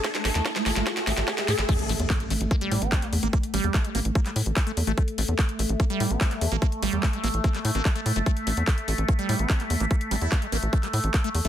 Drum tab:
CC |----------------|x---------------|----------------|----------------|
HH |xxoxxxoxxxoxxxox|xxoxxxoxxxoxxxox|xxoxxxoxxxoxxxox|xxoxxxoxxxoxxxox|
CP |----------------|----x-------xx--|----x----x--x---|----x-------xx--|
SD |oooooooooooooooo|----------------|----------------|----------------|
BD |o---o---o---o---|o---o---o---o---|o---o---o---o---|o---o---o---o---|

CC |----------------|----------------|----------------|
HH |xxoxxxoxxxoxxxox|xxoxxxoxxxoxxxox|xxoxxxoxxxoxxxox|
CP |----x----x--x---|----x-------xx--|----x----x--x---|
SD |----------------|----------------|----------------|
BD |o---o---o---o---|o---o---o---o---|o---o---o---o---|